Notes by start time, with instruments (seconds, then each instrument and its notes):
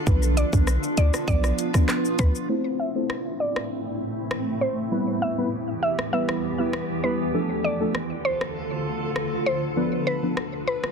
Already playing: ambient pad D4
0.06 808-style bass B1, synth stab F3 B3 D4 B4, ambient pad B3 F4, kick, shaker
0.23 shaker
0.37 synth pluck D5, closed hi-hat, shaker
0.53 808-style bass B1, synth stab F3 B3 D4 B4, kick, shaker
0.67 cross-stick, shaker
0.83 shaker
0.97 808-style bass D2, synth pluck D5, closed hi-hat, shaker
1.14 cross-stick, shaker
1.28 808-style bass B1, synth stab F3 B3 D4 B4, synth pluck D5, kick, shaker
1.44 cross-stick, shaker
1.59 closed hi-hat, shaker
1.74 synth stab F3 B3 D4 B4, kick, cross-stick, shaker
1.89 cross-stick, clap, shaker
2.05 shaker
2.19 808-style bass D2, synth stab F3 B3 D4, synth pluck B4, kick, closed hi-hat, shaker
2.35 shaker
2.49 ambient pad A2 A3 C4 E4, synth stab A3 C4 E4 C5
2.79 synth pluck E5
2.95 synth stab A3 C4 E4 C5
3.10 cross-stick
3.40 synth pluck D5
3.56 cross-stick
4.31 cross-stick
4.61 synth pluck C5
4.91 ambient pad E2 E3 B3 G4, synth stab G3 B3 E4 B4
5.22 synth pluck E5
5.38 synth stab G3 B3 E4 B4
5.83 synth pluck E5
5.99 cross-stick
6.12 synth stab G3 B3 E4 B4, synth pluck E5
6.29 cross-stick
6.59 synth stab G3 B3 E4 B4
6.73 cross-stick
7.03 synth stab G3 B3 E4 B4, synth pluck B4
7.34 ambient pad D2 D3 F4 A4, synth stab F3 A3 D4 A4
7.64 synth pluck D5
7.80 synth stab F3 A3 D4 A4
7.95 cross-stick
8.25 synth pluck C5
8.41 cross-stick
9.16 cross-stick
9.46 synth pluck C5
9.76 ambient pad B2 F3 D4 B4, synth stab F3 B3 D4 B4
10.07 synth pluck B4
10.23 synth stab F3 B3 D4 B4
10.37 cross-stick
10.68 synth pluck B4
10.84 cross-stick